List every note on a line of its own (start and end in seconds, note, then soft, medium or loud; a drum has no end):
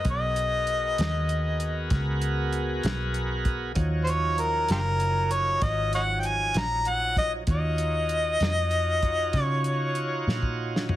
0.04 0.95 B1 medium
0.04 3.72 B3 medium
0.04 3.72 F#4 medium
0.04 3.73 G#4 medium
0.04 3.72 A#4 medium
0.04 kick loud
0.04 closed hi-hat medium
0.11 1.90 D#5 medium
0.36 closed hi-hat medium
0.67 closed hi-hat medium
0.98 1.89 D#2 medium
0.98 snare loud
0.98 closed hi-hat medium
1.29 closed hi-hat medium
1.60 closed hi-hat medium
1.90 2.81 C#2 medium
1.90 kick loud
1.90 snare soft
1.90 closed hi-hat medium
2.22 closed hi-hat medium
2.53 closed hi-hat medium
2.84 3.74 B1 medium
2.84 snare loud
2.84 closed hi-hat medium
3.14 closed hi-hat medium
3.45 kick medium
3.45 closed hi-hat medium
3.75 4.66 D#2 medium
3.75 7.44 F3 medium
3.75 7.44 F#3 medium
3.75 7.43 D#4 medium
3.75 7.44 C#5 medium
3.75 kick medium
3.75 closed hi-hat medium
4.04 4.12 C5 medium
4.04 closed hi-hat medium
4.10 4.42 C#5 medium
4.38 4.71 A#4 medium
4.38 closed hi-hat medium
4.69 5.60 F#1 medium
4.69 4.79 F4 medium
4.69 4.80 G4 medium
4.69 5.34 A#4 medium
4.69 snare medium
4.69 closed hi-hat medium
5.00 closed hi-hat medium
5.31 5.65 C#5 medium
5.31 closed hi-hat medium
5.62 6.52 G#1 medium
5.62 5.94 D#5 medium
5.62 kick loud
5.62 snare soft
5.62 closed hi-hat medium
5.93 6.03 C#5 medium
5.93 6.02 D#5 medium
5.93 6.21 F#5 medium
5.93 closed hi-hat medium
6.19 6.28 G5 medium
6.19 closed hi-hat medium
6.27 6.61 G#5 medium
6.54 7.45 A#1 medium
6.54 snare loud
6.54 closed hi-hat medium
6.59 6.90 A#5 medium
6.85 7.18 F#5 medium
6.85 closed hi-hat medium
7.16 7.32 D#5 medium
7.16 kick medium
7.16 snare soft
7.16 closed hi-hat medium
7.47 8.38 D#2 medium
7.47 10.96 D#4 medium
7.47 10.96 F4 medium
7.47 10.96 F#4 medium
7.47 10.96 C#5 medium
7.47 9.43 D#5 medium
7.47 kick loud
7.47 closed hi-hat medium
7.78 closed hi-hat medium
8.09 closed hi-hat medium
8.40 9.31 F2 medium
8.40 snare loud
8.40 closed hi-hat medium
8.71 closed hi-hat soft
9.02 kick medium
9.02 closed hi-hat medium
9.33 10.24 C#3 medium
9.33 kick loud
9.33 snare soft
9.33 closed hi-hat medium
9.43 10.55 C#5 medium
9.64 closed hi-hat medium
9.95 closed hi-hat medium
10.27 10.96 A#2 medium
10.27 snare medium
10.43 kick medium
10.76 snare medium
10.89 floor tom medium